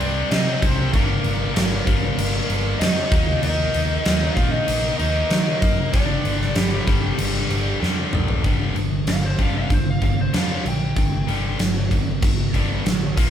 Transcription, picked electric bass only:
0.00 C2
0.31 C3
0.63 C2
0.94 G1
1.25 G1
1.56 G1
1.87 G1
2.18 G1
2.50 G1
2.80 F2
3.12 D#2
3.44 D#2
3.75 D#2
4.06 D#2
4.37 A#2
4.68 A#1
4.99 D#2
5.31 D#3
5.62 F#2
5.94 G1
6.25 G1
6.56 G1
6.87 G1
7.19 G1
7.50 G1
7.82 F2
8.14 A#1
8.44 G1
8.76 G1
9.08 G1
9.39 G1
9.70 G1
10.02 G1
10.33 F2
10.65 A#1
10.97 G1
11.28 G1
11.60 G1
11.91 G1
12.23 G1
12.54 G1
12.87 A1
13.17 A#1

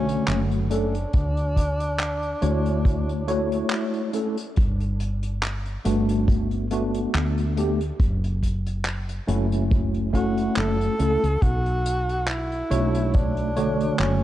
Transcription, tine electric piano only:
Already playing: D3 A3 C#4 F#4
0.70 A3 C#4 D4 A4
2.42 A3 E4 F#4 C#5
3.27 A3 E4 F#4 C#5
4.13 A3 C#4 E4 A4
5.85 A3 B3 D4 F#4
6.71 A3 B3 D4 F#4
7.56 A3 B3 D4 G4
9.27 A3 C#4 E4 F#4
10.13 A3 C#4 E4 F#4
10.99 A3 C#4 E4 A4
12.70 A3 D4 F#4 C#5
13.56 D3 A3 F#4 C#5

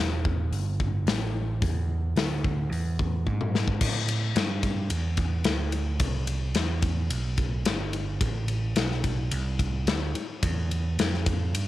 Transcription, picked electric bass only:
Already playing: E1
0.52 G1
1.07 A1
1.62 E2
2.16 D2
2.71 E2
3.27 G#2
3.81 A2
4.35 G2
4.90 E2
5.45 D2
6.00 C2
6.55 E2
7.11 B1
7.66 G1
8.21 A1
8.76 B1
9.32 C2
9.87 D2
10.15 muted picked electric bass stroke
10.43 E2
10.99 F2
11.54 G2

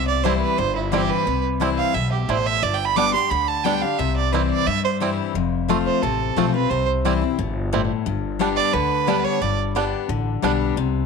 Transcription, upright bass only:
Already playing: C2
0.58 G1
1.27 C2
1.94 B1
2.28 A1
2.62 G1
3.31 D2
3.99 C2
4.67 G2
5.35 F1
6.03 A1
6.36 B1
6.70 C2
7.39 G1
8.06 G1
8.74 D2
9.41 G1
10.09 A1
10.42 B1
10.76 C2

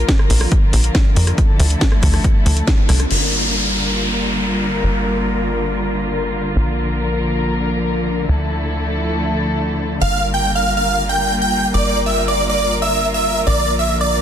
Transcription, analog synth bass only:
0.30 A#1
0.73 A#1
1.16 F2
1.60 D2
2.03 D2
2.46 D2
2.89 C2
3.11 G1
4.83 G1
6.56 A#1
8.29 D2
10.01 G1
11.74 G1
13.47 A#1

